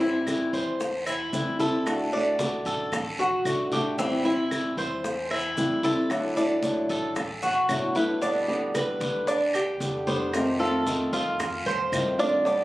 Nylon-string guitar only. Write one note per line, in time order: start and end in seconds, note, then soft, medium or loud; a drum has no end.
0.00 0.26 G3 medium
0.00 0.26 C4 medium
0.00 0.25 E4 medium
0.26 0.79 E3 medium
0.26 0.79 G3 medium
0.26 0.79 C4 medium
0.26 0.79 E4 medium
0.80 muted nylon-string guitar stroke medium
1.32 1.58 E3 medium
1.32 1.58 G3 medium
1.32 1.59 C4 medium
1.32 1.58 E4 medium
1.59 1.86 G3 medium
1.59 1.85 C4 medium
1.59 1.85 E4 medium
1.86 2.11 D3 medium
1.86 2.12 A3 medium
1.86 2.12 D4 medium
1.86 2.11 F#4 medium
2.12 2.38 A3 medium
2.12 2.38 D4 medium
2.12 2.38 F#4 medium
2.39 2.91 D3 soft
2.39 2.91 A3 medium
2.39 2.92 D4 medium
2.39 2.92 F#4 medium
2.92 muted nylon-string guitar stroke medium
3.45 3.70 D3 soft
3.45 3.71 A3 medium
3.45 3.71 D4 medium
3.45 3.70 F#4 medium
3.72 3.98 A3 medium
3.72 3.98 D4 medium
3.72 3.97 F#4 medium
3.98 4.23 E3 medium
3.98 4.24 G3 medium
3.98 4.24 C4 medium
3.98 4.23 E4 medium
4.24 4.51 G3 medium
4.24 4.50 C4 medium
4.24 4.50 E4 medium
4.51 5.03 E3 medium
4.51 5.03 G3 medium
4.51 5.04 C4 medium
4.51 5.04 E4 medium
5.04 muted nylon-string guitar stroke medium
5.56 5.82 E3 medium
5.56 5.83 G3 medium
5.56 5.83 C4 medium
5.56 5.82 E4 medium
5.83 6.10 G3 medium
5.83 6.09 C4 medium
5.83 6.09 E4 medium
6.10 6.35 D3 medium
6.10 6.36 F#3 medium
6.10 6.36 A3 medium
6.10 6.36 D4 medium
6.10 6.35 E4 medium
6.37 6.62 F#3 medium
6.37 6.63 A3 medium
6.37 6.62 D4 medium
6.37 6.62 E4 medium
6.63 7.15 F#3 medium
6.63 7.15 A3 medium
6.63 7.16 D4 medium
6.63 7.16 E4 medium
7.16 muted nylon-string guitar stroke medium
7.69 7.95 F#3 medium
7.69 7.95 A3 medium
7.69 7.95 D4 medium
7.69 7.94 E4 medium
7.95 8.22 F#3 medium
7.95 8.22 A3 medium
7.95 8.21 D4 medium
7.95 8.21 E4 medium
8.22 8.47 B2 medium
8.22 8.48 D3 medium
8.22 8.48 G3 medium
8.22 8.48 B3 medium
8.22 8.47 G4 medium
8.48 8.73 D3 medium
8.48 8.74 G3 medium
8.48 8.74 B3 medium
8.48 8.74 G4 medium
8.74 9.27 D3 medium
8.74 9.27 G3 medium
8.74 9.27 B3 medium
8.74 9.27 G4 medium
9.28 muted nylon-string guitar stroke medium
9.80 10.06 D3 medium
9.80 10.06 G3 medium
9.80 10.06 B3 medium
9.80 10.05 G4 medium
10.07 10.33 D3 medium
10.07 10.33 G3 medium
10.07 10.33 B3 medium
10.07 10.32 G4 medium
10.33 10.59 C3 medium
10.33 10.59 D#3 medium
10.33 10.60 A3 medium
10.33 10.59 C4 medium
10.33 10.58 F4 medium
10.59 10.84 D#3 medium
10.59 10.85 A3 medium
10.59 10.86 C4 medium
10.59 10.85 F4 medium
10.86 11.38 D#3 medium
10.86 11.39 A3 medium
10.86 11.39 C4 medium
10.86 11.39 F4 medium
11.40 muted nylon-string guitar stroke medium
11.92 12.18 D#3 soft
11.92 12.18 A3 medium
11.92 12.18 C4 medium
11.92 12.17 F4 medium
12.19 12.46 D#3 medium
12.19 12.45 A3 medium
12.19 12.45 C4 medium
12.19 12.44 F4 medium
12.45 12.64 B2 medium
12.45 12.64 D3 medium
12.45 12.64 G3 medium
12.45 12.64 B3 medium
12.45 12.64 G4 medium